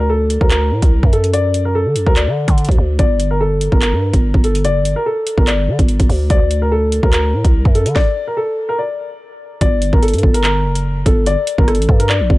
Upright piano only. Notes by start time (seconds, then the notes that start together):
0.10 A4
0.41 A#4
0.51 A#4
1.13 A4
1.33 D5
1.65 A#4
1.75 A4
2.07 A#4
2.17 D5
2.99 D5
3.31 A#4
3.41 A4
3.72 A#4
3.82 A#4
4.44 A4
4.65 D5
4.96 A#4
5.06 A4
5.38 A#4
5.47 D5
6.30 D5
6.62 A#4
6.72 A4
7.03 A#4
7.13 A#4
7.75 A4
7.95 D5
8.27 A#4
8.37 A4
8.69 A#4
8.79 D5
9.61 D5
9.93 A#4
10.03 A4
10.34 A#4
10.44 A#4
11.06 A4
11.27 D5
11.58 A#4
11.68 A4
12.00 A#4
12.09 D5